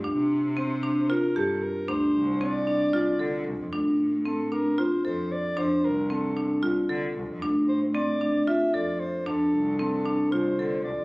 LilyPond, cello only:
\new Staff \with { instrumentName = "Cello" } { \clef bass \time 7/8 \key d \minor \tempo 4 = 114 d,16 c2~ c16 g,8 r8 | d,16 r16 c,4. c,16 r16 d8 c,16 f,16 | d,16 a,2~ a,16 f,8 r8 | f,16 r16 c,4. c,16 r16 d8 c,16 f,16 |
d,16 a,2~ a,16 f,8 r8 | f,16 r16 c,4. c,16 r16 d8 c,16 f,16 | }